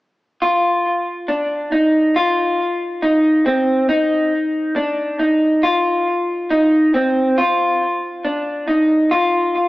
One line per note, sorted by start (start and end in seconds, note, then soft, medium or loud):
0.42 1.29 F4 medium
1.28 1.72 D4 medium
1.72 2.16 D#4 medium
2.16 3.03 F4 medium
3.02 3.45 D#4 medium
3.46 3.88 C4 medium
3.89 4.76 D#4 medium
4.76 5.19 D4 medium
5.19 5.63 D#4 medium
5.63 6.50 F4 medium
6.50 6.94 D#4 medium
6.94 7.38 C4 medium
7.38 8.25 F4 medium
8.25 8.67 D4 medium
8.68 9.11 D#4 medium
9.11 9.68 F4 medium